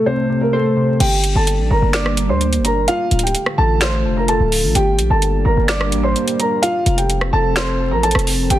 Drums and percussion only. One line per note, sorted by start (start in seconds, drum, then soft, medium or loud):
1.00 closed hi-hat medium
1.00 crash loud
1.24 closed hi-hat medium
1.47 closed hi-hat medium
1.93 finger snap medium
1.93 snare loud
1.93 closed hi-hat medium
2.06 cross-stick medium
2.17 closed hi-hat medium
2.41 closed hi-hat soft
2.53 closed hi-hat medium
2.65 closed hi-hat medium
2.88 closed hi-hat medium
3.11 closed hi-hat soft
3.19 closed hi-hat medium
3.27 closed hi-hat medium
3.35 closed hi-hat medium
3.46 cross-stick medium
3.81 finger snap loud
3.81 snare loud
3.81 closed hi-hat medium
4.28 closed hi-hat medium
4.52 open hi-hat medium
4.75 closed hi-hat medium
4.99 closed hi-hat medium
5.22 closed hi-hat medium
5.68 finger snap medium
5.68 snare loud
5.68 closed hi-hat medium
5.81 cross-stick loud
5.92 closed hi-hat medium
6.16 closed hi-hat soft
6.28 closed hi-hat medium
6.40 closed hi-hat medium
6.63 closed hi-hat medium
6.86 closed hi-hat medium
6.98 closed hi-hat soft
7.10 closed hi-hat medium
7.21 cross-stick medium
7.56 finger snap medium
7.56 snare loud
7.56 closed hi-hat medium
8.03 closed hi-hat medium
8.11 cross-stick loud
8.11 closed hi-hat medium
8.19 closed hi-hat medium
8.27 open hi-hat medium
8.50 closed hi-hat medium